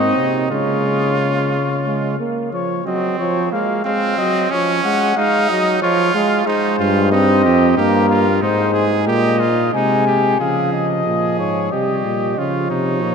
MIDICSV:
0, 0, Header, 1, 5, 480
1, 0, Start_track
1, 0, Key_signature, -5, "major"
1, 0, Tempo, 668896
1, 367, Time_signature, 3, 2, 24, 8
1, 2765, Tempo, 655738
1, 9570, End_track
2, 0, Start_track
2, 0, Title_t, "Cornet"
2, 0, Program_c, 0, 56
2, 0, Note_on_c, 0, 75, 85
2, 245, Note_off_c, 0, 75, 0
2, 367, Note_on_c, 0, 73, 65
2, 1554, Note_off_c, 0, 73, 0
2, 1820, Note_on_c, 0, 73, 72
2, 2039, Note_off_c, 0, 73, 0
2, 2057, Note_on_c, 0, 75, 67
2, 2286, Note_off_c, 0, 75, 0
2, 2290, Note_on_c, 0, 73, 84
2, 2523, Note_off_c, 0, 73, 0
2, 2526, Note_on_c, 0, 77, 75
2, 2756, Note_off_c, 0, 77, 0
2, 2760, Note_on_c, 0, 77, 77
2, 3004, Note_on_c, 0, 75, 82
2, 3015, Note_off_c, 0, 77, 0
2, 3241, Note_off_c, 0, 75, 0
2, 3245, Note_on_c, 0, 73, 73
2, 3482, Note_off_c, 0, 73, 0
2, 3488, Note_on_c, 0, 78, 83
2, 3726, Note_on_c, 0, 77, 96
2, 3737, Note_off_c, 0, 78, 0
2, 3964, Note_on_c, 0, 75, 88
2, 3975, Note_off_c, 0, 77, 0
2, 4199, Note_off_c, 0, 75, 0
2, 4204, Note_on_c, 0, 73, 88
2, 4439, Note_off_c, 0, 73, 0
2, 4444, Note_on_c, 0, 77, 81
2, 4679, Note_on_c, 0, 72, 79
2, 4690, Note_off_c, 0, 77, 0
2, 5150, Note_off_c, 0, 72, 0
2, 5154, Note_on_c, 0, 75, 92
2, 5625, Note_off_c, 0, 75, 0
2, 5637, Note_on_c, 0, 70, 83
2, 6105, Note_off_c, 0, 70, 0
2, 6116, Note_on_c, 0, 72, 75
2, 6419, Note_off_c, 0, 72, 0
2, 6591, Note_on_c, 0, 75, 89
2, 7043, Note_off_c, 0, 75, 0
2, 7074, Note_on_c, 0, 80, 69
2, 7549, Note_off_c, 0, 80, 0
2, 7558, Note_on_c, 0, 77, 58
2, 7784, Note_off_c, 0, 77, 0
2, 7796, Note_on_c, 0, 75, 69
2, 8273, Note_off_c, 0, 75, 0
2, 8282, Note_on_c, 0, 73, 69
2, 8525, Note_on_c, 0, 75, 65
2, 8536, Note_off_c, 0, 73, 0
2, 9009, Note_on_c, 0, 73, 61
2, 9020, Note_off_c, 0, 75, 0
2, 9570, Note_off_c, 0, 73, 0
2, 9570, End_track
3, 0, Start_track
3, 0, Title_t, "Trumpet"
3, 0, Program_c, 1, 56
3, 0, Note_on_c, 1, 63, 72
3, 357, Note_off_c, 1, 63, 0
3, 364, Note_on_c, 1, 65, 82
3, 1552, Note_off_c, 1, 65, 0
3, 2054, Note_on_c, 1, 60, 77
3, 2528, Note_on_c, 1, 58, 66
3, 2539, Note_off_c, 1, 60, 0
3, 2754, Note_off_c, 1, 58, 0
3, 2759, Note_on_c, 1, 60, 89
3, 3244, Note_on_c, 1, 61, 102
3, 3255, Note_off_c, 1, 60, 0
3, 3727, Note_off_c, 1, 61, 0
3, 3731, Note_on_c, 1, 63, 95
3, 4198, Note_off_c, 1, 63, 0
3, 4209, Note_on_c, 1, 65, 98
3, 4675, Note_off_c, 1, 65, 0
3, 4683, Note_on_c, 1, 63, 89
3, 4913, Note_off_c, 1, 63, 0
3, 4917, Note_on_c, 1, 65, 85
3, 5151, Note_off_c, 1, 65, 0
3, 5157, Note_on_c, 1, 63, 86
3, 5388, Note_off_c, 1, 63, 0
3, 5393, Note_on_c, 1, 67, 74
3, 5626, Note_off_c, 1, 67, 0
3, 5630, Note_on_c, 1, 67, 81
3, 5865, Note_off_c, 1, 67, 0
3, 5869, Note_on_c, 1, 65, 82
3, 6105, Note_on_c, 1, 63, 86
3, 6116, Note_off_c, 1, 65, 0
3, 6337, Note_off_c, 1, 63, 0
3, 6341, Note_on_c, 1, 68, 75
3, 6581, Note_off_c, 1, 68, 0
3, 6586, Note_on_c, 1, 67, 83
3, 6823, Note_on_c, 1, 65, 72
3, 6834, Note_off_c, 1, 67, 0
3, 7068, Note_off_c, 1, 65, 0
3, 7079, Note_on_c, 1, 63, 78
3, 7311, Note_off_c, 1, 63, 0
3, 7316, Note_on_c, 1, 67, 74
3, 7553, Note_off_c, 1, 67, 0
3, 7557, Note_on_c, 1, 68, 67
3, 7916, Note_off_c, 1, 68, 0
3, 8041, Note_on_c, 1, 68, 63
3, 8515, Note_off_c, 1, 68, 0
3, 8524, Note_on_c, 1, 67, 63
3, 9010, Note_on_c, 1, 65, 70
3, 9021, Note_off_c, 1, 67, 0
3, 9240, Note_off_c, 1, 65, 0
3, 9245, Note_on_c, 1, 63, 68
3, 9570, Note_off_c, 1, 63, 0
3, 9570, End_track
4, 0, Start_track
4, 0, Title_t, "Trombone"
4, 0, Program_c, 2, 57
4, 0, Note_on_c, 2, 60, 81
4, 355, Note_off_c, 2, 60, 0
4, 366, Note_on_c, 2, 56, 68
4, 1114, Note_off_c, 2, 56, 0
4, 1335, Note_on_c, 2, 56, 70
4, 1561, Note_off_c, 2, 56, 0
4, 1572, Note_on_c, 2, 58, 71
4, 1805, Note_off_c, 2, 58, 0
4, 1810, Note_on_c, 2, 53, 66
4, 2033, Note_off_c, 2, 53, 0
4, 2046, Note_on_c, 2, 54, 76
4, 2282, Note_off_c, 2, 54, 0
4, 2289, Note_on_c, 2, 53, 79
4, 2522, Note_off_c, 2, 53, 0
4, 2527, Note_on_c, 2, 56, 71
4, 2759, Note_off_c, 2, 56, 0
4, 2764, Note_on_c, 2, 56, 70
4, 3000, Note_off_c, 2, 56, 0
4, 3005, Note_on_c, 2, 54, 76
4, 3241, Note_off_c, 2, 54, 0
4, 3244, Note_on_c, 2, 53, 71
4, 3481, Note_off_c, 2, 53, 0
4, 3488, Note_on_c, 2, 56, 82
4, 3720, Note_off_c, 2, 56, 0
4, 3724, Note_on_c, 2, 56, 78
4, 3960, Note_off_c, 2, 56, 0
4, 3968, Note_on_c, 2, 54, 78
4, 4202, Note_off_c, 2, 54, 0
4, 4205, Note_on_c, 2, 53, 86
4, 4437, Note_off_c, 2, 53, 0
4, 4442, Note_on_c, 2, 56, 94
4, 4677, Note_off_c, 2, 56, 0
4, 4680, Note_on_c, 2, 56, 81
4, 5159, Note_on_c, 2, 60, 97
4, 5170, Note_off_c, 2, 56, 0
4, 5632, Note_off_c, 2, 60, 0
4, 5636, Note_on_c, 2, 58, 95
4, 5991, Note_off_c, 2, 58, 0
4, 6115, Note_on_c, 2, 56, 81
4, 6854, Note_off_c, 2, 56, 0
4, 7073, Note_on_c, 2, 56, 80
4, 7528, Note_off_c, 2, 56, 0
4, 7558, Note_on_c, 2, 53, 67
4, 8497, Note_off_c, 2, 53, 0
4, 8528, Note_on_c, 2, 55, 58
4, 8998, Note_off_c, 2, 55, 0
4, 9008, Note_on_c, 2, 53, 69
4, 9570, Note_off_c, 2, 53, 0
4, 9570, End_track
5, 0, Start_track
5, 0, Title_t, "Bass trombone"
5, 0, Program_c, 3, 57
5, 0, Note_on_c, 3, 44, 75
5, 119, Note_off_c, 3, 44, 0
5, 123, Note_on_c, 3, 48, 62
5, 361, Note_off_c, 3, 48, 0
5, 365, Note_on_c, 3, 49, 80
5, 1553, Note_off_c, 3, 49, 0
5, 4921, Note_on_c, 3, 43, 104
5, 5399, Note_on_c, 3, 41, 99
5, 5410, Note_off_c, 3, 43, 0
5, 5629, Note_off_c, 3, 41, 0
5, 5634, Note_on_c, 3, 43, 94
5, 6103, Note_off_c, 3, 43, 0
5, 6109, Note_on_c, 3, 44, 99
5, 6590, Note_on_c, 3, 46, 91
5, 6601, Note_off_c, 3, 44, 0
5, 7066, Note_off_c, 3, 46, 0
5, 7071, Note_on_c, 3, 48, 77
5, 7547, Note_off_c, 3, 48, 0
5, 7557, Note_on_c, 3, 49, 63
5, 8014, Note_off_c, 3, 49, 0
5, 8041, Note_on_c, 3, 46, 55
5, 8283, Note_on_c, 3, 44, 59
5, 8294, Note_off_c, 3, 46, 0
5, 8526, Note_off_c, 3, 44, 0
5, 8529, Note_on_c, 3, 48, 55
5, 8762, Note_off_c, 3, 48, 0
5, 8766, Note_on_c, 3, 46, 54
5, 8998, Note_off_c, 3, 46, 0
5, 9002, Note_on_c, 3, 49, 65
5, 9238, Note_off_c, 3, 49, 0
5, 9243, Note_on_c, 3, 48, 68
5, 9478, Note_on_c, 3, 46, 73
5, 9489, Note_off_c, 3, 48, 0
5, 9570, Note_off_c, 3, 46, 0
5, 9570, End_track
0, 0, End_of_file